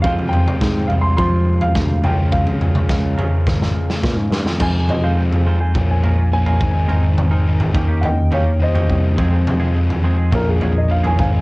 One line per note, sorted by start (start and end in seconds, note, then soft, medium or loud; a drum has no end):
0.02 2.02 F2 medium
0.02 0.57 F2 loud
0.02 2.02 C3 loud
0.02 1.17 F3 medium
0.02 2.04 F3 loud
0.02 2.03 F3 medium
0.02 1.18 G#3 medium
0.02 2.05 G#3 loud
0.02 2.03 C4 loud
0.02 2.03 C4 medium
0.02 1.20 F4 loud
0.02 0.32 F5 medium
0.02 kick loud
0.02 floor tom medium
0.06 2.03 G#4 medium
0.06 1.18 C5 loud
0.06 2.03 G5 medium
0.19 floor tom medium
0.29 0.84 G5 loud
0.29 floor tom medium
0.48 mid tom medium
0.61 0.87 G#2 loud
0.61 kick loud
0.61 snare medium
0.87 1.15 C2 loud
0.87 0.92 F5 medium
0.87 floor tom medium
1.01 1.16 C6 medium
1.17 2.04 F3 medium
1.17 1.71 F3 medium
1.17 2.04 G#3 medium
1.17 2.06 F4 medium
1.17 2.03 C5 medium
1.17 1.57 C6 loud
1.17 kick loud
1.17 floor tom medium
1.61 2.05 F5 loud
1.61 floor tom medium
1.75 2.01 D2 medium
1.75 kick loud
1.75 snare medium
1.75 mid tom medium
2.03 2.85 C#2 loud
2.03 4.58 C#3 medium
2.03 4.30 C#3 medium
2.03 3.16 C#3 medium
2.03 3.16 F3 loud
2.03 4.31 F3 medium
2.03 3.17 G#3 loud
2.03 4.32 G#3 medium
2.03 4.58 C#4 medium
2.03 3.17 C#4 medium
2.03 4.32 C#4 loud
2.03 3.17 F4 loud
2.03 4.58 A#4 medium
2.03 3.16 A#4 loud
2.03 4.58 F5 medium
2.03 2.34 G5 medium
2.03 floor tom medium
2.32 4.00 F5 medium
2.32 kick loud
2.32 floor tom medium
2.47 floor tom medium
2.61 floor tom medium
2.75 mid tom medium
2.89 3.15 C#2 medium
2.89 kick loud
2.89 snare medium
3.17 4.32 C#3 medium
3.17 4.31 F3 medium
3.17 4.31 G#3 medium
3.17 4.31 C#4 loud
3.17 4.31 F4 medium
3.17 4.30 A#4 medium
3.17 floor tom medium
3.46 3.72 G#1 medium
3.46 kick loud
3.46 snare medium
3.62 snare medium
3.90 snare medium
4.03 4.16 A#2 medium
4.03 kick loud
4.03 snare medium
4.16 4.30 G#2 medium
4.31 4.44 G2 medium
4.31 snare medium
4.45 4.59 F2 medium
4.45 snare medium
4.59 5.03 F2 medium
4.59 5.71 F2 medium
4.59 5.03 C3 loud
4.59 4.75 F3 loud
4.59 4.79 G#3 medium
4.59 4.74 G#3 loud
4.59 5.74 C4 medium
4.59 4.73 C4 loud
4.59 4.79 D#4 medium
4.59 5.74 F4 medium
4.59 4.79 F4 medium
4.59 4.79 C5 medium
4.59 5.74 D#5 medium
4.59 7.72 G#5 medium
4.59 4.89 G#5 medium
4.59 kick loud
4.59 floor tom medium
4.59 crash loud
4.74 5.05 F3 medium
4.74 5.03 G#3 medium
4.74 5.01 C4 medium
4.89 5.03 D#5 medium
4.89 floor tom loud
4.89 mid tom medium
5.02 5.17 F3 medium
5.02 5.17 G#3 medium
5.02 5.23 G#3 medium
5.02 5.18 C4 medium
5.02 5.23 D#4 medium
5.02 5.23 F4 medium
5.02 5.22 C5 medium
5.02 5.59 F5 medium
5.16 5.73 F2 medium
5.16 5.43 C3 medium
5.16 5.45 F3 loud
5.16 5.46 G#3 loud
5.16 5.46 C4 loud
5.33 muted clean electric guitar stroke soft
5.33 floor tom medium
5.45 5.60 C3 medium
5.45 5.60 F3 medium
5.45 5.60 G#3 medium
5.45 5.60 C4 medium
5.45 5.60 D#4 medium
5.45 5.60 F4 loud
5.45 5.59 C5 loud
5.60 5.76 G#3 medium
5.60 5.75 D#4 medium
5.60 5.75 F4 medium
5.60 5.75 C5 medium
5.60 5.89 G#5 medium
5.60 muted overdriven electric guitar stroke soft
5.74 6.57 A#1 loud
5.74 6.02 A#2 medium
5.74 6.03 F3 loud
5.74 6.04 A#3 medium
5.74 6.60 C#4 medium
5.74 6.04 C#4 loud
5.74 9.15 A#4 medium
5.74 6.60 F5 medium
5.74 kick loud
5.74 floor tom loud
5.91 6.32 G#5 medium
6.02 6.31 A#2 medium
6.02 6.18 F3 medium
6.02 6.22 G#3 medium
6.02 6.17 A#3 medium
6.02 6.22 C#4 medium
6.02 6.17 C#4 medium
6.02 6.22 F4 medium
6.02 6.23 A#4 medium
6.02 floor tom medium
6.18 muted overdriven electric guitar stroke medium
6.32 6.59 A#2 medium
6.32 6.60 F3 medium
6.32 6.60 A#3 loud
6.32 6.60 C#4 loud
6.32 7.44 G#5 loud
6.46 6.61 G#3 medium
6.46 6.62 C#4 medium
6.46 6.61 F4 loud
6.46 6.61 A#4 medium
6.46 floor tom medium
6.60 7.71 G#1 medium
6.60 6.87 G#2 medium
6.60 6.88 D#3 medium
6.60 6.75 G#3 medium
6.60 7.75 C4 medium
6.60 6.74 C4 loud
6.60 6.72 D#4 medium
6.60 10.30 D#5 medium
6.60 kick loud
6.74 6.89 G#3 medium
6.74 6.89 C4 medium
6.74 6.90 D#4 medium
6.74 muted clean electric guitar stroke soft
6.87 7.32 G#2 medium
6.87 7.32 D#3 loud
6.87 7.07 G#3 medium
6.87 7.04 G#3 loud
6.87 7.07 C4 medium
6.87 7.03 C4 loud
6.87 7.08 D#4 medium
6.87 7.01 D#4 loud
6.87 7.08 A#4 loud
6.87 floor tom medium
7.02 7.32 G#3 medium
7.02 7.31 C4 medium
7.02 7.30 D#4 medium
7.18 floor tom medium
7.18 mid tom medium
7.31 7.51 G#3 medium
7.31 7.46 G#3 medium
7.31 7.51 C4 medium
7.31 7.47 C4 medium
7.31 7.47 D#4 medium
7.31 7.50 D#4 medium
7.31 7.50 A#4 medium
7.45 7.73 G#2 medium
7.45 7.73 D#3 loud
7.45 7.74 G#3 medium
7.45 7.74 C4 loud
7.45 7.74 D#4 loud
7.60 muted clean electric guitar stroke medium
7.60 floor tom medium
7.74 8.86 D#2 medium
7.74 7.88 D#3 medium
7.74 8.18 D#3 medium
7.74 7.88 A#3 medium
7.74 9.17 C#4 medium
7.74 7.88 C#4 loud
7.74 7.88 C#4 medium
7.74 7.87 G4 medium
7.74 7.87 G4 loud
7.74 9.17 G5 medium
7.74 kick loud
7.88 8.08 D#3 medium
7.88 8.08 A#3 medium
7.88 8.08 C#4 medium
7.88 8.08 G4 medium
7.88 muted overdriven electric guitar stroke medium
8.01 8.31 D#5 medium
8.01 8.05 F#5 medium
8.01 floor tom medium
8.05 8.33 G5 medium
8.31 8.58 D#3 medium
8.31 8.51 D#3 medium
8.31 8.51 A#3 medium
8.31 8.45 A#3 medium
8.31 8.51 C#4 medium
8.31 8.45 C#4 medium
8.31 8.51 G4 loud
8.31 8.44 G4 medium
8.31 8.59 C#5 medium
8.31 8.61 F5 medium
8.31 floor tom medium
8.46 muted overdriven electric guitar stroke medium
8.59 8.86 D#3 medium
8.59 8.87 A#3 loud
8.59 8.88 C#4 medium
8.59 8.89 G4 loud
8.59 9.72 C5 medium
8.59 9.73 D#5 loud
8.74 8.94 D#3 medium
8.74 8.94 A#3 medium
8.74 8.94 C#4 medium
8.74 8.94 G4 loud
8.74 floor tom medium
8.87 9.18 C2 medium
8.87 9.16 D#3 medium
8.87 9.03 A#3 medium
8.87 9.02 C#4 medium
8.87 9.01 G4 medium
8.87 kick medium
9.02 9.17 A#3 medium
9.02 9.16 C#4 medium
9.02 9.16 G4 medium
9.02 muted clean electric guitar stroke medium
9.17 10.29 F2 medium
9.17 9.37 D#3 medium
9.17 9.61 F3 loud
9.17 9.37 G#3 medium
9.17 9.32 G#3 loud
9.17 9.37 C4 medium
9.17 9.31 C4 loud
9.17 11.16 F4 medium
9.17 9.29 F4 loud
9.17 9.37 G#4 loud
9.17 10.31 C5 medium
9.17 11.41 G#5 medium
9.17 kick loud
9.17 floor tom medium
9.30 9.61 G#3 medium
9.30 9.59 C4 medium
9.30 9.58 F4 medium
9.47 floor tom loud
9.47 mid tom medium
9.59 9.80 D#3 medium
9.59 9.80 G#3 medium
9.59 9.74 G#3 medium
9.59 9.75 C4 medium
9.59 9.80 C4 medium
9.59 9.76 F4 medium
9.59 9.79 G#4 medium
9.74 10.02 F3 loud
9.74 10.03 G#3 loud
9.74 10.04 C4 medium
9.74 10.05 F4 loud
9.89 muted clean electric guitar stroke medium
9.89 floor tom medium
10.03 10.18 D#3 medium
10.03 10.31 F3 medium
10.03 10.17 G#3 medium
10.03 10.18 G#3 medium
10.03 10.17 C4 loud
10.03 10.17 C4 medium
10.03 10.17 F4 medium
10.03 10.16 G#4 loud
10.18 10.33 D#3 medium
10.18 10.33 G#3 medium
10.18 10.33 C4 medium
10.18 10.33 G#4 medium
10.18 muted overdriven electric guitar stroke medium
10.31 11.15 A#1 loud
10.31 10.87 A#2 medium
10.31 10.58 F3 medium
10.31 10.60 A#3 loud
10.31 10.61 C#4 loud
10.31 10.61 F4 loud
10.31 11.41 A#4 medium
10.31 10.48 A#4 medium
10.31 11.17 C#5 medium
10.31 kick loud
10.31 floor tom medium
10.49 10.76 G#4 medium
10.60 10.74 F3 medium
10.60 10.80 F3 medium
10.60 10.80 G#3 loud
10.60 10.74 A#3 medium
10.60 10.74 C#4 medium
10.60 10.81 C#4 loud
10.60 10.73 F4 medium
10.60 10.81 G#4 loud
10.60 floor tom medium
10.74 10.90 D#5 medium
10.74 muted overdriven electric guitar stroke medium
10.88 11.16 A#2 medium
10.88 11.17 F3 medium
10.88 11.17 A#3 medium
10.88 11.17 C#4 loud
10.88 11.18 F4 loud
10.88 11.04 F5 loud
11.04 11.19 F3 medium
11.04 11.19 G#3 medium
11.04 11.19 C#4 medium
11.04 11.19 G#4 medium
11.04 11.18 G#5 medium
11.04 floor tom medium
11.17 11.41 G#1 medium
11.17 11.41 G#2 medium
11.17 11.41 D#3 medium
11.17 11.34 G#3 medium
11.17 11.32 C4 loud
11.17 11.41 D#4 medium
11.17 11.30 D#4 loud
11.17 11.41 C5 medium
11.17 11.41 F5 medium
11.17 11.41 G#5 medium
11.17 kick loud
11.32 11.41 G#3 medium
11.32 11.41 C4 medium
11.32 11.41 D#4 medium
11.32 muted clean electric guitar stroke medium